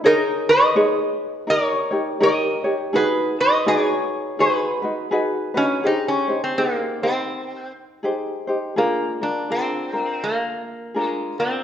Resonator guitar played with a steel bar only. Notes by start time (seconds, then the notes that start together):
0.06 D#4 A#4
0.49 B4 D#5
1.50 A#4 C#5
2.23 A#4 D#5
2.96 G#4 B4
3.40 B4 D#5
3.68 G#4 C#5
4.40 G#4 B4
5.57 C#4
5.87 D#4
6.08 C#4
6.44 C4
6.58 B3
6.75 A#3
7.03 C4
8.78 A#3
9.23 D4
9.52 C4
10.24 A#3
11.07 G#3
11.40 C4